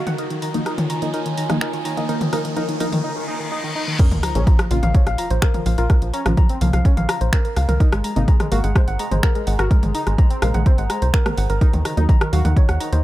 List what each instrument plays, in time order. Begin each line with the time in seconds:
Already playing: ambient pad F#4 D#5 A#5, riser
0.07 analog synth lead D#3, synth pluck F#5, closed hi-hat, mid tom
0.18 analog synth lead D#4, ambient pad F4, synth pluck A#4, closed hi-hat
0.30 analog synth lead D#3, closed hi-hat
0.42 analog synth lead D#3, synth pluck A#5, open hi-hat
0.46 ambient pad G#5
0.50 synth stab D#3 F3 A#3, ambient pad C#5
0.54 analog synth lead D#4, closed hi-hat
0.66 analog synth lead D#4, synth pluck A#4, cross-stick, closed hi-hat
0.78 analog synth lead D#3, closed hi-hat, mid tom
0.90 analog synth lead D#3, synth pluck A#5, open hi-hat
1.02 synth stab D#3 F3 A#3, analog synth lead D#4, closed hi-hat
1.14 analog synth lead D#4, synth pluck A#4, closed hi-hat
1.26 analog synth lead D#3, closed hi-hat
1.38 analog synth lead D#3, synth pluck A#5, open hi-hat
1.50 synth stab D#3 F3 A#3, analog synth lead D#4, cross-stick, closed hi-hat, mid tom
1.61 analog synth lead D#4, synth pluck A#4, finger snap, closed hi-hat
1.73 analog synth lead D#3, closed hi-hat
1.85 analog synth lead D#3, synth pluck A#5, open hi-hat
1.97 synth stab D#3 F3 A#3, analog synth lead D#4, closed hi-hat
2.09 synth stab D#3 F3 A#3, analog synth lead D#4, synth pluck A#4, closed hi-hat
2.21 analog synth lead D#3, closed hi-hat, mid tom
2.33 synth stab D#3 F3 A#3, analog synth lead D#4, synth pluck A#4, cross-stick, open hi-hat
2.45 analog synth lead D#3, closed hi-hat
2.57 synth stab D#3 F3 A#3, analog synth lead D#4, synth pluck A#4, closed hi-hat
2.69 analog synth lead D#3, closed hi-hat
2.80 synth stab D#3 F3 A#3, analog synth lead D#4, synth pluck A#4, open hi-hat
2.92 analog synth lead D#3, open hi-hat, mid tom
3.04 analog synth lead D#4, reverse cymbal
3.16 analog synth lead D#3
3.28 analog synth lead D#4
3.40 analog synth lead D#3
3.52 analog synth lead D#4
3.64 analog synth lead D#3
3.75 analog synth lead D#4
3.88 analog synth lead D#3
3.99 analog synth lead C#4, synth pluck A#4, kick, closed hi-hat, crash, sub drop
4.11 analog synth bass A#1, analog synth lead F3, closed hi-hat, mid tom
4.23 analog synth lead F3, synth pluck A#5, cross-stick, open hi-hat
4.35 analog synth bass A#1, synth stab C#3 F3 A#3, analog synth lead C#4, closed hi-hat
4.47 analog synth lead F3, synth pluck A#5, kick, closed hi-hat
4.59 analog synth lead F3, cross-stick, closed hi-hat
4.71 analog synth bass A#1, synth stab C#3 F3 A#3, analog synth lead F4, synth pluck F5, open hi-hat
4.83 analog synth bass A#1, analog synth lead F3, synth pluck F5, closed hi-hat, mid tom
4.95 analog synth lead F3, synth pluck C#5, kick, closed hi-hat
5.07 analog synth bass A#1, synth pluck F5, cross-stick, closed hi-hat
5.18 analog synth lead F3, synth pluck A#5, ambient pad A#5, open hi-hat
5.30 analog synth bass A#1, analog synth lead F3, synth pluck C5, closed hi-hat
5.42 synth pluck A#4, finger snap, kick, cross-stick, closed hi-hat
5.54 analog synth lead F3, synth pluck A#4, closed hi-hat, mid tom
5.66 analog synth bass A#1, analog synth lead F3, synth pluck F5, open hi-hat
5.78 analog synth bass A#1, analog synth lead F4, synth pluck A#4, closed hi-hat
5.90 analog synth lead F3, synth pluck A#4, kick, cross-stick, closed hi-hat
6.02 analog synth bass A#1, analog synth lead F3, closed hi-hat
6.14 analog synth lead C#4, synth pluck A#5, open hi-hat
6.26 analog synth bass A#1, synth stab C#3 F3 A#3, analog synth lead F3, cross-stick, closed hi-hat, mid tom
6.37 synth pluck A#5, kick, closed hi-hat
6.49 analog synth lead C4, closed hi-hat
6.61 analog synth bass C2, synth stab C#3 F3 A#3, analog synth lead F3, synth pluck F5, open hi-hat
6.73 analog synth bass C2, analog synth lead F3, synth pluck F5, cross-stick, closed hi-hat
6.85 analog synth lead C#4, synth pluck C#5, kick, closed hi-hat
6.97 analog synth bass A#1, analog synth lead F3, synth pluck F5, closed hi-hat, mid tom
7.09 analog synth lead F3, synth pluck A#5, cross-stick, open hi-hat
7.21 analog synth bass A#1, synth pluck C5, closed hi-hat
7.33 synth pluck A#4, finger snap, kick
7.45 synth pluck A#4, closed hi-hat
7.57 analog synth bass C#2, synth pluck F5, cross-stick, open hi-hat
7.69 analog synth bass C#2, synth pluck A#4, closed hi-hat, mid tom
7.80 analog synth lead D#4, ambient pad G#4, synth pluck A#4, kick, closed hi-hat
7.92 analog synth bass G#1, analog synth lead G#3, cross-stick, closed hi-hat
8.04 analog synth lead G#3, synth pluck A#5, open hi-hat
8.16 analog synth bass G#1, synth stab C3 G#3 A#3, analog synth lead D#4, closed hi-hat
8.28 analog synth lead G#3, synth pluck A#5, kick, closed hi-hat
8.40 analog synth lead G#3, ambient pad C5, cross-stick, closed hi-hat, mid tom
8.52 analog synth bass G#1, synth stab C3 G#3 A#3, analog synth lead F#4, synth pluck F5, open hi-hat
8.64 analog synth bass G#1, analog synth lead G#3, synth pluck F#5, closed hi-hat
8.76 analog synth lead G#3, synth pluck C5, kick, cross-stick, closed hi-hat
8.88 analog synth bass G#1, synth pluck F#5, closed hi-hat
8.99 analog synth lead G#3, synth pluck A#5, open hi-hat
9.11 analog synth bass G#1, analog synth lead G#3, synth pluck C5, closed hi-hat, mid tom
9.23 synth pluck A#4, finger snap, kick, cross-stick, closed hi-hat
9.35 analog synth lead G#3, synth pluck A#4, closed hi-hat
9.47 analog synth bass G#1, analog synth lead G#3, synth pluck F#5, open hi-hat
9.59 analog synth bass G#1, analog synth lead F#4, synth pluck A#4, cross-stick, closed hi-hat
9.71 analog synth lead G#3, synth pluck A#4, kick, closed hi-hat
9.83 analog synth bass G#1, analog synth lead G#3, closed hi-hat, mid tom
9.95 analog synth lead D#4, synth pluck A#5, open hi-hat
10.07 analog synth bass G#1, analog synth lead G#3, cross-stick, closed hi-hat
10.18 analog synth lead G#3, synth pluck A#5, kick, closed hi-hat
10.30 analog synth lead C4, closed hi-hat
10.42 analog synth bass A#1, synth stab C3 G#3 A#3, analog synth lead G#3, synth pluck F5, cross-stick, open hi-hat
10.54 analog synth bass A#1, analog synth lead G#3, synth pluck F#5, closed hi-hat, mid tom
10.66 analog synth lead C4, synth pluck C5, kick, closed hi-hat
10.78 analog synth bass G#1, analog synth lead G#3, synth pluck F#5, closed hi-hat
10.90 analog synth lead G#3, synth pluck A#5, cross-stick, open hi-hat
11.02 analog synth bass C2, synth pluck C5, closed hi-hat
11.14 synth pluck A#4, finger snap, kick, closed hi-hat
11.26 synth stab C3 G#3 A#3, synth pluck A#4, cross-stick, closed hi-hat, mid tom
11.38 analog synth bass G#1, synth pluck F#5, open hi-hat
11.50 analog synth bass G#1, synth pluck A#4, closed hi-hat
11.61 analog synth lead D#4, ambient pad F#4, synth pluck A#4, kick, closed hi-hat
11.73 analog synth bass D#2, analog synth lead D#3, closed hi-hat, mid tom
11.85 analog synth lead D#3, synth pluck A#5, cross-stick, open hi-hat
11.97 analog synth bass D#2, synth stab D#3 F#3 A#3, analog synth lead D#4, closed hi-hat
12.06 analog synth lead D#3, ambient pad D#5, synth pluck A#5, kick, closed hi-hat
12.21 analog synth lead D#3, synth pluck A#4, cross-stick, closed hi-hat
12.33 analog synth bass D#2, synth stab D#3 F#3 A#3, analog synth lead F#4, synth pluck F5, open hi-hat
12.45 analog synth bass D#2, analog synth lead D#3, synth pluck F#5, closed hi-hat, mid tom
12.56 analog synth lead D#3, synth pluck C#5, kick, closed hi-hat
12.69 analog synth bass D#2, synth pluck F#5, cross-stick, closed hi-hat
12.80 analog synth lead D#3, synth pluck A#5, open hi-hat
12.93 analog synth bass D#2, analog synth lead D#3, synth pluck C5, closed hi-hat